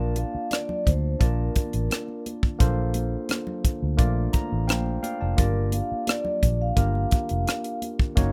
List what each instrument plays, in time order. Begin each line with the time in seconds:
Already playing: fingered electric bass A#1, tine electric piano A#3 D4 F4 D5 A5, vibraphone A#4
0.16 vibraphone F5, closed hi-hat, high conga
0.35 muted fingered electric bass stroke
0.51 vibraphone D5, cross-stick, closed hi-hat, high conga
0.69 muted conga, low conga
0.86 fingered electric bass D2, vibraphone C5, kick, closed hi-hat
1.19 fingered electric bass A#1, tine electric piano A#3 D4 F4 D5 A5, vibraphone A#4, kick, closed hi-hat, muted conga
1.55 kick, closed hi-hat, high conga
1.73 fingered electric bass A1, closed hi-hat
1.90 cross-stick, closed hi-hat, high conga
2.08 muted conga
2.26 closed hi-hat, high conga
2.43 kick
2.59 fingered electric bass A#1, tine electric piano A#3 D4 F4 A4 C5, kick, closed hi-hat, muted conga, low conga
2.94 closed hi-hat, high conga
3.29 cross-stick, closed hi-hat, muted conga, high conga
3.47 low conga
3.65 muted fingered electric bass stroke, kick, closed hi-hat
3.83 fingered electric bass D2
3.97 fingered electric bass A#1, tine electric piano A3 A#3 D4 F4 D5, kick, closed hi-hat
4.33 tine electric piano A#5, kick, closed hi-hat, high conga
4.52 fingered electric bass A1
4.67 fingered electric bass A#1, tine electric piano C5 F5 G5, cross-stick, closed hi-hat, high conga
4.86 muted conga
5.03 tine electric piano D5 F5 G5, closed hi-hat, high conga
5.21 fingered electric bass F1, tine electric piano D5 A5
5.37 fingered electric bass G1, tine electric piano A#3 D4 F4 G4 D5, vibraphone A#4, kick, closed hi-hat, low conga
5.72 vibraphone F5, closed hi-hat, high conga
5.92 muted fingered electric bass stroke
6.07 vibraphone D5, cross-stick, closed hi-hat, high conga
6.25 low conga
6.43 fingered electric bass A#1, kick, closed hi-hat
6.62 vibraphone F5
6.76 fingered electric bass G1, tine electric piano A#3 D4 F4 G4 A#4, vibraphone F5, kick, closed hi-hat
6.95 muted conga
7.11 kick, closed hi-hat, high conga
7.29 fingered electric bass F1, closed hi-hat
7.47 cross-stick, closed hi-hat, high conga
7.64 closed hi-hat
7.82 closed hi-hat, high conga
7.99 kick
8.16 fingered electric bass F#1, tine electric piano A#3 C#4 D#4 F#4 C#5, kick, closed hi-hat, low conga